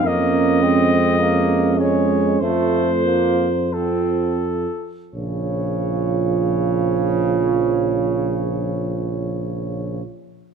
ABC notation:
X:1
M:4/4
L:1/8
Q:1/4=44
K:Bbm
V:1 name="Flugelhorn"
e3 d c2 =A2 | d8 |]
V:2 name="French horn section"
D2 D2 F2 F z | F8 |]
V:3 name="Trombone"
B, C B, A, =A, B, C z | D,8 |]
V:4 name="Euphonium"
B, A,3 =A, B, C z | F,8 |]
V:5 name="Tuba" clef=bass
F,,4 F,,3 z | B,,,8 |]